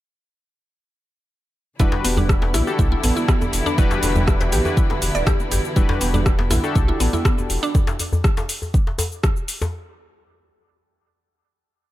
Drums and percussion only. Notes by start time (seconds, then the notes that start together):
1.79 kick, muted conga, djembe tone, low conga, cabasa
1.92 djembe slap
2.04 open hi-hat, muted conga, high conga, cabasa
2.17 djembe tone, high conga, djembe bass, low conga, cabasa
2.29 kick, cross-stick, muted conga, cabasa
2.42 djembe slap, high conga, djembe tone
2.54 cross-stick, open hi-hat, high conga, cabasa
2.67 muted conga, cabasa
2.79 kick, djembe tone, high conga, cabasa
2.92 muted conga
3.04 open hi-hat, djembe tone, cabasa
3.17 muted conga, high conga, cabasa
3.28 kick, cross-stick, cabasa
3.41 muted conga, djembe tone, cabasa
3.53 open hi-hat, cabasa
3.66 djembe tone, cabasa
3.78 kick, muted conga, low conga, cabasa
3.91 djembe slap, cabasa
4.03 open hi-hat, muted conga, djembe tone, high conga, cabasa
4.16 high conga, djembe bass, low conga, cabasa
4.27 kick, cross-stick, muted conga, djembe tone, cabasa
4.41 djembe slap, cabasa
4.52 open hi-hat, high conga, cabasa
4.65 muted conga, djembe tone, cabasa
4.77 kick, cabasa
4.90 djembe slap, muted conga, djembe tone
5.02 open hi-hat, cabasa
5.15 muted conga, cabasa
5.26 kick, cross-stick, djembe tone, cabasa
5.40 muted conga, cabasa
5.51 open hi-hat, djembe tone, cabasa
5.65 cabasa
5.76 kick, muted conga, low conga, cabasa
5.89 djembe slap, djembe tone
6.01 open hi-hat, muted conga, high conga, cabasa
6.13 djembe tone, high conga, djembe bass, low conga, cabasa
6.26 kick, cross-stick, muted conga, cabasa
6.39 djembe slap, high conga
6.51 cross-stick, open hi-hat, djembe tone, high conga, cabasa
6.64 muted conga, cabasa
6.75 kick, high conga, djembe tone, cabasa
6.89 muted conga
7.00 open hi-hat, cabasa
7.13 muted conga, djembe tone, high conga, cabasa
7.25 kick, cross-stick, cabasa
7.38 muted conga, djembe tone, cabasa
7.50 open hi-hat, cabasa
7.63 cabasa
7.75 kick, djembe tone, cabasa
7.87 djembe slap, cabasa
7.99 open hi-hat, djembe tone, cabasa
8.13 djembe bass, cabasa
8.24 kick, cross-stick, cabasa
8.37 djembe slap, djembe tone, cabasa
8.49 open hi-hat, cabasa
8.62 djembe tone, cabasa
8.74 kick, cabasa
8.87 djembe slap
8.98 open hi-hat, djembe tone, cabasa
9.12 cabasa
9.23 kick, cross-stick, djembe tone, cabasa
9.36 cabasa
9.48 open hi-hat, cabasa
9.61 djembe slap, djembe tone, cabasa